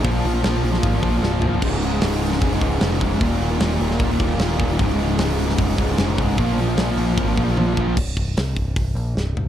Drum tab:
CC |----------------|x---------------|----------------|----------------|
HH |o-o-o-o-o-o-----|--o-o-o-o-o-o-o-|o-o-o-o-o-o-o---|o-o-o-o-o-o-o-o-|
SD |----o--o----o---|----o--o----o---|----o--o----o---|----o--o----o---|
T1 |----------------|----------------|----------------|----------------|
FT |--------------o-|----------------|----------------|----------------|
BD |o-------o-o-----|o-------o-o---o-|o-------o-o---o-|o-------o-o---o-|

CC |----------------|x---------------|
HH |o-o-o-o-o-o-----|--o-o-o-o-o-----|
SD |----o-----------|----o-------o---|
T1 |------------o---|----------------|
FT |----------------|--------------o-|
BD |o-------o-o---o-|o-o---o-o-------|